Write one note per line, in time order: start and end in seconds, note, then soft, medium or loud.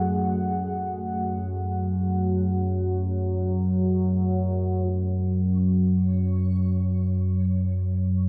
0.00 4.87 F#2 medium
0.00 4.87 F#3 medium
0.00 4.87 A3 medium
0.00 4.87 G#4 medium
0.00 4.87 F#5 medium
4.85 8.29 F#2 medium
4.85 8.29 F#3 medium
4.85 8.29 C#5 medium